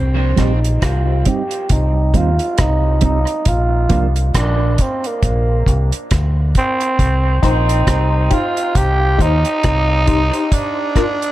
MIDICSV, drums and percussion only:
0, 0, Header, 1, 2, 480
1, 0, Start_track
1, 0, Key_signature, -3, "minor"
1, 0, Tempo, 882353
1, 1884, Time_signature, 4, 2, 24, 8
1, 6158, End_track
2, 0, Start_track
2, 0, Title_t, "Drums"
2, 204, Note_on_c, 9, 42, 69
2, 205, Note_on_c, 9, 36, 72
2, 208, Note_on_c, 9, 37, 60
2, 258, Note_off_c, 9, 42, 0
2, 260, Note_off_c, 9, 36, 0
2, 263, Note_off_c, 9, 37, 0
2, 350, Note_on_c, 9, 42, 52
2, 405, Note_off_c, 9, 42, 0
2, 446, Note_on_c, 9, 42, 95
2, 447, Note_on_c, 9, 36, 96
2, 449, Note_on_c, 9, 37, 102
2, 501, Note_off_c, 9, 36, 0
2, 501, Note_off_c, 9, 42, 0
2, 504, Note_off_c, 9, 37, 0
2, 682, Note_on_c, 9, 42, 71
2, 687, Note_on_c, 9, 36, 78
2, 737, Note_off_c, 9, 42, 0
2, 742, Note_off_c, 9, 36, 0
2, 820, Note_on_c, 9, 42, 52
2, 875, Note_off_c, 9, 42, 0
2, 922, Note_on_c, 9, 42, 78
2, 925, Note_on_c, 9, 36, 94
2, 976, Note_off_c, 9, 42, 0
2, 979, Note_off_c, 9, 36, 0
2, 1163, Note_on_c, 9, 36, 79
2, 1165, Note_on_c, 9, 42, 64
2, 1217, Note_off_c, 9, 36, 0
2, 1219, Note_off_c, 9, 42, 0
2, 1301, Note_on_c, 9, 42, 54
2, 1356, Note_off_c, 9, 42, 0
2, 1402, Note_on_c, 9, 42, 77
2, 1407, Note_on_c, 9, 37, 93
2, 1408, Note_on_c, 9, 36, 93
2, 1456, Note_off_c, 9, 42, 0
2, 1461, Note_off_c, 9, 37, 0
2, 1462, Note_off_c, 9, 36, 0
2, 1637, Note_on_c, 9, 42, 76
2, 1645, Note_on_c, 9, 36, 77
2, 1692, Note_off_c, 9, 42, 0
2, 1699, Note_off_c, 9, 36, 0
2, 1779, Note_on_c, 9, 42, 46
2, 1833, Note_off_c, 9, 42, 0
2, 1879, Note_on_c, 9, 42, 86
2, 1883, Note_on_c, 9, 36, 96
2, 1933, Note_off_c, 9, 42, 0
2, 1937, Note_off_c, 9, 36, 0
2, 2119, Note_on_c, 9, 42, 71
2, 2122, Note_on_c, 9, 36, 80
2, 2174, Note_off_c, 9, 42, 0
2, 2176, Note_off_c, 9, 36, 0
2, 2262, Note_on_c, 9, 42, 53
2, 2317, Note_off_c, 9, 42, 0
2, 2364, Note_on_c, 9, 36, 97
2, 2364, Note_on_c, 9, 42, 103
2, 2367, Note_on_c, 9, 37, 108
2, 2418, Note_off_c, 9, 36, 0
2, 2419, Note_off_c, 9, 42, 0
2, 2421, Note_off_c, 9, 37, 0
2, 2601, Note_on_c, 9, 42, 69
2, 2605, Note_on_c, 9, 36, 76
2, 2656, Note_off_c, 9, 42, 0
2, 2660, Note_off_c, 9, 36, 0
2, 2743, Note_on_c, 9, 42, 51
2, 2797, Note_off_c, 9, 42, 0
2, 2843, Note_on_c, 9, 36, 108
2, 2843, Note_on_c, 9, 42, 77
2, 2897, Note_off_c, 9, 36, 0
2, 2898, Note_off_c, 9, 42, 0
2, 3082, Note_on_c, 9, 36, 84
2, 3088, Note_on_c, 9, 42, 66
2, 3136, Note_off_c, 9, 36, 0
2, 3143, Note_off_c, 9, 42, 0
2, 3223, Note_on_c, 9, 42, 54
2, 3277, Note_off_c, 9, 42, 0
2, 3322, Note_on_c, 9, 42, 84
2, 3326, Note_on_c, 9, 36, 108
2, 3327, Note_on_c, 9, 37, 88
2, 3377, Note_off_c, 9, 42, 0
2, 3381, Note_off_c, 9, 36, 0
2, 3382, Note_off_c, 9, 37, 0
2, 3563, Note_on_c, 9, 42, 71
2, 3564, Note_on_c, 9, 36, 84
2, 3617, Note_off_c, 9, 42, 0
2, 3619, Note_off_c, 9, 36, 0
2, 3702, Note_on_c, 9, 42, 45
2, 3757, Note_off_c, 9, 42, 0
2, 3803, Note_on_c, 9, 36, 104
2, 3804, Note_on_c, 9, 42, 79
2, 3857, Note_off_c, 9, 36, 0
2, 3859, Note_off_c, 9, 42, 0
2, 4041, Note_on_c, 9, 36, 88
2, 4042, Note_on_c, 9, 42, 72
2, 4047, Note_on_c, 9, 37, 52
2, 4096, Note_off_c, 9, 36, 0
2, 4097, Note_off_c, 9, 42, 0
2, 4102, Note_off_c, 9, 37, 0
2, 4185, Note_on_c, 9, 42, 56
2, 4239, Note_off_c, 9, 42, 0
2, 4282, Note_on_c, 9, 36, 97
2, 4282, Note_on_c, 9, 42, 103
2, 4285, Note_on_c, 9, 37, 107
2, 4336, Note_off_c, 9, 36, 0
2, 4337, Note_off_c, 9, 42, 0
2, 4340, Note_off_c, 9, 37, 0
2, 4519, Note_on_c, 9, 42, 73
2, 4523, Note_on_c, 9, 36, 88
2, 4573, Note_off_c, 9, 42, 0
2, 4577, Note_off_c, 9, 36, 0
2, 4661, Note_on_c, 9, 42, 48
2, 4716, Note_off_c, 9, 42, 0
2, 4762, Note_on_c, 9, 36, 102
2, 4762, Note_on_c, 9, 42, 92
2, 4816, Note_off_c, 9, 36, 0
2, 4816, Note_off_c, 9, 42, 0
2, 5001, Note_on_c, 9, 36, 85
2, 5007, Note_on_c, 9, 42, 57
2, 5055, Note_off_c, 9, 36, 0
2, 5062, Note_off_c, 9, 42, 0
2, 5139, Note_on_c, 9, 42, 52
2, 5194, Note_off_c, 9, 42, 0
2, 5241, Note_on_c, 9, 42, 75
2, 5245, Note_on_c, 9, 36, 107
2, 5246, Note_on_c, 9, 37, 101
2, 5296, Note_off_c, 9, 42, 0
2, 5300, Note_off_c, 9, 36, 0
2, 5301, Note_off_c, 9, 37, 0
2, 5480, Note_on_c, 9, 42, 77
2, 5483, Note_on_c, 9, 36, 90
2, 5535, Note_off_c, 9, 42, 0
2, 5538, Note_off_c, 9, 36, 0
2, 5622, Note_on_c, 9, 42, 43
2, 5676, Note_off_c, 9, 42, 0
2, 5722, Note_on_c, 9, 36, 106
2, 5722, Note_on_c, 9, 42, 88
2, 5776, Note_off_c, 9, 36, 0
2, 5776, Note_off_c, 9, 42, 0
2, 5960, Note_on_c, 9, 36, 85
2, 5961, Note_on_c, 9, 42, 70
2, 5966, Note_on_c, 9, 37, 59
2, 6015, Note_off_c, 9, 36, 0
2, 6016, Note_off_c, 9, 42, 0
2, 6020, Note_off_c, 9, 37, 0
2, 6105, Note_on_c, 9, 42, 54
2, 6158, Note_off_c, 9, 42, 0
2, 6158, End_track
0, 0, End_of_file